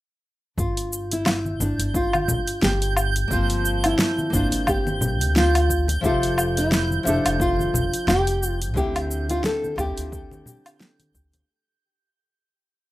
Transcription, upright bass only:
0, 0, Header, 1, 2, 480
1, 0, Start_track
1, 0, Tempo, 681818
1, 409, Time_signature, 4, 2, 24, 8
1, 9094, End_track
2, 0, Start_track
2, 0, Title_t, "Upright bass"
2, 0, Program_c, 0, 32
2, 405, Note_on_c, 0, 31, 94
2, 1080, Note_off_c, 0, 31, 0
2, 1126, Note_on_c, 0, 31, 85
2, 1225, Note_off_c, 0, 31, 0
2, 1261, Note_on_c, 0, 31, 77
2, 1560, Note_off_c, 0, 31, 0
2, 1607, Note_on_c, 0, 31, 75
2, 1706, Note_off_c, 0, 31, 0
2, 1847, Note_on_c, 0, 31, 92
2, 2281, Note_off_c, 0, 31, 0
2, 2328, Note_on_c, 0, 31, 94
2, 2761, Note_off_c, 0, 31, 0
2, 3047, Note_on_c, 0, 31, 87
2, 3146, Note_off_c, 0, 31, 0
2, 3182, Note_on_c, 0, 31, 81
2, 3664, Note_off_c, 0, 31, 0
2, 3664, Note_on_c, 0, 38, 92
2, 4201, Note_off_c, 0, 38, 0
2, 4248, Note_on_c, 0, 29, 92
2, 4922, Note_off_c, 0, 29, 0
2, 4969, Note_on_c, 0, 29, 88
2, 5067, Note_off_c, 0, 29, 0
2, 5104, Note_on_c, 0, 29, 81
2, 5401, Note_off_c, 0, 29, 0
2, 5449, Note_on_c, 0, 29, 82
2, 5547, Note_off_c, 0, 29, 0
2, 5682, Note_on_c, 0, 29, 98
2, 6166, Note_off_c, 0, 29, 0
2, 6166, Note_on_c, 0, 38, 98
2, 6600, Note_off_c, 0, 38, 0
2, 6884, Note_on_c, 0, 38, 85
2, 6984, Note_off_c, 0, 38, 0
2, 7023, Note_on_c, 0, 38, 82
2, 7321, Note_off_c, 0, 38, 0
2, 7845, Note_on_c, 0, 38, 80
2, 8028, Note_off_c, 0, 38, 0
2, 9094, End_track
0, 0, End_of_file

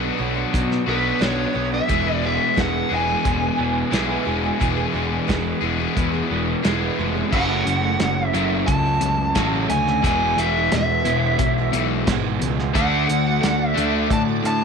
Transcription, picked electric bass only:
0, 0, Header, 1, 2, 480
1, 0, Start_track
1, 0, Tempo, 678733
1, 1337, Time_signature, 4, 2, 24, 8
1, 10356, End_track
2, 0, Start_track
2, 0, Title_t, "Picked electric bass"
2, 0, Program_c, 0, 34
2, 138, Note_on_c, 0, 35, 86
2, 305, Note_off_c, 0, 35, 0
2, 385, Note_on_c, 0, 47, 83
2, 550, Note_off_c, 0, 47, 0
2, 615, Note_on_c, 0, 35, 87
2, 783, Note_off_c, 0, 35, 0
2, 854, Note_on_c, 0, 35, 77
2, 1023, Note_off_c, 0, 35, 0
2, 1099, Note_on_c, 0, 35, 74
2, 1266, Note_off_c, 0, 35, 0
2, 1342, Note_on_c, 0, 28, 85
2, 1676, Note_off_c, 0, 28, 0
2, 1822, Note_on_c, 0, 28, 82
2, 1989, Note_off_c, 0, 28, 0
2, 2059, Note_on_c, 0, 28, 82
2, 2227, Note_off_c, 0, 28, 0
2, 2302, Note_on_c, 0, 28, 88
2, 2469, Note_off_c, 0, 28, 0
2, 2537, Note_on_c, 0, 28, 83
2, 2706, Note_off_c, 0, 28, 0
2, 2772, Note_on_c, 0, 35, 76
2, 2942, Note_off_c, 0, 35, 0
2, 3017, Note_on_c, 0, 28, 83
2, 3186, Note_off_c, 0, 28, 0
2, 3262, Note_on_c, 0, 28, 95
2, 3429, Note_off_c, 0, 28, 0
2, 3494, Note_on_c, 0, 28, 75
2, 3664, Note_off_c, 0, 28, 0
2, 3743, Note_on_c, 0, 28, 78
2, 3910, Note_off_c, 0, 28, 0
2, 3973, Note_on_c, 0, 28, 80
2, 4143, Note_off_c, 0, 28, 0
2, 4222, Note_on_c, 0, 40, 84
2, 4389, Note_off_c, 0, 40, 0
2, 4459, Note_on_c, 0, 28, 79
2, 4627, Note_off_c, 0, 28, 0
2, 4706, Note_on_c, 0, 28, 77
2, 4872, Note_off_c, 0, 28, 0
2, 4943, Note_on_c, 0, 29, 76
2, 5110, Note_off_c, 0, 29, 0
2, 5184, Note_on_c, 0, 30, 95
2, 5396, Note_off_c, 0, 30, 0
2, 5418, Note_on_c, 0, 30, 73
2, 5632, Note_off_c, 0, 30, 0
2, 5660, Note_on_c, 0, 30, 83
2, 5873, Note_off_c, 0, 30, 0
2, 5899, Note_on_c, 0, 30, 85
2, 6112, Note_off_c, 0, 30, 0
2, 6140, Note_on_c, 0, 37, 83
2, 6353, Note_off_c, 0, 37, 0
2, 6377, Note_on_c, 0, 37, 86
2, 6591, Note_off_c, 0, 37, 0
2, 6619, Note_on_c, 0, 33, 76
2, 6832, Note_off_c, 0, 33, 0
2, 6857, Note_on_c, 0, 38, 78
2, 7070, Note_off_c, 0, 38, 0
2, 7098, Note_on_c, 0, 28, 89
2, 7311, Note_off_c, 0, 28, 0
2, 7335, Note_on_c, 0, 28, 81
2, 7549, Note_off_c, 0, 28, 0
2, 7583, Note_on_c, 0, 28, 88
2, 7793, Note_off_c, 0, 28, 0
2, 7817, Note_on_c, 0, 28, 86
2, 8029, Note_off_c, 0, 28, 0
2, 8058, Note_on_c, 0, 35, 87
2, 8270, Note_off_c, 0, 35, 0
2, 8294, Note_on_c, 0, 35, 93
2, 8508, Note_off_c, 0, 35, 0
2, 8538, Note_on_c, 0, 32, 79
2, 8750, Note_off_c, 0, 32, 0
2, 8780, Note_on_c, 0, 37, 83
2, 8990, Note_off_c, 0, 37, 0
2, 9020, Note_on_c, 0, 38, 96
2, 9230, Note_off_c, 0, 38, 0
2, 9265, Note_on_c, 0, 38, 79
2, 9472, Note_off_c, 0, 38, 0
2, 9501, Note_on_c, 0, 38, 87
2, 9710, Note_off_c, 0, 38, 0
2, 9740, Note_on_c, 0, 38, 90
2, 9949, Note_off_c, 0, 38, 0
2, 9978, Note_on_c, 0, 45, 90
2, 10187, Note_off_c, 0, 45, 0
2, 10214, Note_on_c, 0, 45, 95
2, 10356, Note_off_c, 0, 45, 0
2, 10356, End_track
0, 0, End_of_file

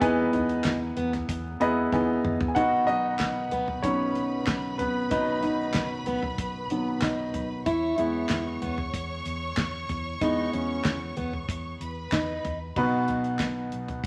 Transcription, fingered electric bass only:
0, 0, Header, 1, 2, 480
1, 0, Start_track
1, 0, Key_signature, 5, "major"
1, 0, Tempo, 637620
1, 13, Time_signature, 4, 2, 24, 8
1, 10590, End_track
2, 0, Start_track
2, 0, Title_t, "Fingered electric bass"
2, 0, Program_c, 0, 33
2, 13, Note_on_c, 0, 40, 101
2, 210, Note_off_c, 0, 40, 0
2, 250, Note_on_c, 0, 40, 84
2, 448, Note_off_c, 0, 40, 0
2, 491, Note_on_c, 0, 40, 96
2, 689, Note_off_c, 0, 40, 0
2, 734, Note_on_c, 0, 40, 103
2, 930, Note_off_c, 0, 40, 0
2, 971, Note_on_c, 0, 40, 103
2, 1168, Note_off_c, 0, 40, 0
2, 1211, Note_on_c, 0, 40, 83
2, 1408, Note_off_c, 0, 40, 0
2, 1449, Note_on_c, 0, 40, 96
2, 1647, Note_off_c, 0, 40, 0
2, 1692, Note_on_c, 0, 40, 100
2, 1888, Note_off_c, 0, 40, 0
2, 1931, Note_on_c, 0, 35, 102
2, 2128, Note_off_c, 0, 35, 0
2, 2174, Note_on_c, 0, 35, 86
2, 2369, Note_off_c, 0, 35, 0
2, 2410, Note_on_c, 0, 35, 94
2, 2607, Note_off_c, 0, 35, 0
2, 2652, Note_on_c, 0, 35, 99
2, 2848, Note_off_c, 0, 35, 0
2, 2887, Note_on_c, 0, 35, 92
2, 3086, Note_off_c, 0, 35, 0
2, 3131, Note_on_c, 0, 35, 78
2, 3328, Note_off_c, 0, 35, 0
2, 3366, Note_on_c, 0, 35, 88
2, 3564, Note_off_c, 0, 35, 0
2, 3613, Note_on_c, 0, 35, 98
2, 3809, Note_off_c, 0, 35, 0
2, 3850, Note_on_c, 0, 35, 111
2, 4047, Note_off_c, 0, 35, 0
2, 4090, Note_on_c, 0, 35, 90
2, 4287, Note_off_c, 0, 35, 0
2, 4327, Note_on_c, 0, 35, 102
2, 4525, Note_off_c, 0, 35, 0
2, 4571, Note_on_c, 0, 35, 103
2, 4767, Note_off_c, 0, 35, 0
2, 4805, Note_on_c, 0, 35, 100
2, 5004, Note_off_c, 0, 35, 0
2, 5049, Note_on_c, 0, 35, 97
2, 5246, Note_off_c, 0, 35, 0
2, 5286, Note_on_c, 0, 35, 99
2, 5484, Note_off_c, 0, 35, 0
2, 5529, Note_on_c, 0, 35, 88
2, 5726, Note_off_c, 0, 35, 0
2, 5769, Note_on_c, 0, 40, 104
2, 5966, Note_off_c, 0, 40, 0
2, 6010, Note_on_c, 0, 40, 95
2, 6206, Note_off_c, 0, 40, 0
2, 6249, Note_on_c, 0, 40, 101
2, 6446, Note_off_c, 0, 40, 0
2, 6491, Note_on_c, 0, 40, 104
2, 6687, Note_off_c, 0, 40, 0
2, 6727, Note_on_c, 0, 40, 103
2, 6924, Note_off_c, 0, 40, 0
2, 6969, Note_on_c, 0, 40, 94
2, 7166, Note_off_c, 0, 40, 0
2, 7207, Note_on_c, 0, 40, 94
2, 7404, Note_off_c, 0, 40, 0
2, 7449, Note_on_c, 0, 40, 102
2, 7646, Note_off_c, 0, 40, 0
2, 7689, Note_on_c, 0, 40, 98
2, 7885, Note_off_c, 0, 40, 0
2, 7931, Note_on_c, 0, 40, 77
2, 8126, Note_off_c, 0, 40, 0
2, 8170, Note_on_c, 0, 40, 86
2, 8366, Note_off_c, 0, 40, 0
2, 8408, Note_on_c, 0, 40, 96
2, 8605, Note_off_c, 0, 40, 0
2, 8647, Note_on_c, 0, 40, 86
2, 8844, Note_off_c, 0, 40, 0
2, 8887, Note_on_c, 0, 40, 87
2, 9084, Note_off_c, 0, 40, 0
2, 9126, Note_on_c, 0, 40, 92
2, 9323, Note_off_c, 0, 40, 0
2, 9366, Note_on_c, 0, 40, 96
2, 9563, Note_off_c, 0, 40, 0
2, 9609, Note_on_c, 0, 35, 96
2, 9805, Note_off_c, 0, 35, 0
2, 9847, Note_on_c, 0, 35, 85
2, 10044, Note_off_c, 0, 35, 0
2, 10088, Note_on_c, 0, 35, 87
2, 10285, Note_off_c, 0, 35, 0
2, 10330, Note_on_c, 0, 35, 83
2, 10526, Note_off_c, 0, 35, 0
2, 10567, Note_on_c, 0, 35, 79
2, 10590, Note_off_c, 0, 35, 0
2, 10590, End_track
0, 0, End_of_file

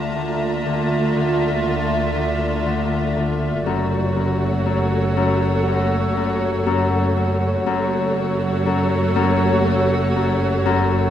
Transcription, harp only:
0, 0, Header, 1, 2, 480
1, 0, Start_track
1, 0, Tempo, 1000000
1, 1759, Time_signature, 4, 2, 24, 8
1, 5328, End_track
2, 0, Start_track
2, 0, Title_t, "Harp"
2, 0, Program_c, 0, 46
2, 0, Note_on_c, 0, 50, 38
2, 72, Note_off_c, 0, 50, 0
2, 77, Note_on_c, 0, 50, 26
2, 311, Note_off_c, 0, 50, 0
2, 317, Note_on_c, 0, 50, 30
2, 548, Note_off_c, 0, 50, 0
2, 554, Note_on_c, 0, 50, 39
2, 789, Note_off_c, 0, 50, 0
2, 795, Note_on_c, 0, 50, 28
2, 1028, Note_off_c, 0, 50, 0
2, 1034, Note_on_c, 0, 50, 29
2, 1270, Note_off_c, 0, 50, 0
2, 1276, Note_on_c, 0, 50, 46
2, 1513, Note_off_c, 0, 50, 0
2, 1519, Note_on_c, 0, 50, 30
2, 1758, Note_on_c, 0, 42, 43
2, 1778, Note_off_c, 0, 50, 0
2, 1992, Note_off_c, 0, 42, 0
2, 1998, Note_on_c, 0, 42, 28
2, 2230, Note_off_c, 0, 42, 0
2, 2235, Note_on_c, 0, 42, 30
2, 2475, Note_off_c, 0, 42, 0
2, 2480, Note_on_c, 0, 42, 48
2, 2718, Note_off_c, 0, 42, 0
2, 2723, Note_on_c, 0, 42, 32
2, 2954, Note_off_c, 0, 42, 0
2, 2960, Note_on_c, 0, 42, 36
2, 3193, Note_off_c, 0, 42, 0
2, 3199, Note_on_c, 0, 42, 55
2, 3434, Note_off_c, 0, 42, 0
2, 3440, Note_on_c, 0, 42, 34
2, 3672, Note_off_c, 0, 42, 0
2, 3678, Note_on_c, 0, 42, 53
2, 3915, Note_off_c, 0, 42, 0
2, 3921, Note_on_c, 0, 42, 33
2, 4151, Note_off_c, 0, 42, 0
2, 4157, Note_on_c, 0, 42, 40
2, 4389, Note_off_c, 0, 42, 0
2, 4395, Note_on_c, 0, 42, 53
2, 4629, Note_off_c, 0, 42, 0
2, 4635, Note_on_c, 0, 42, 37
2, 4870, Note_off_c, 0, 42, 0
2, 4876, Note_on_c, 0, 42, 38
2, 5109, Note_off_c, 0, 42, 0
2, 5115, Note_on_c, 0, 42, 65
2, 5328, Note_off_c, 0, 42, 0
2, 5328, End_track
0, 0, End_of_file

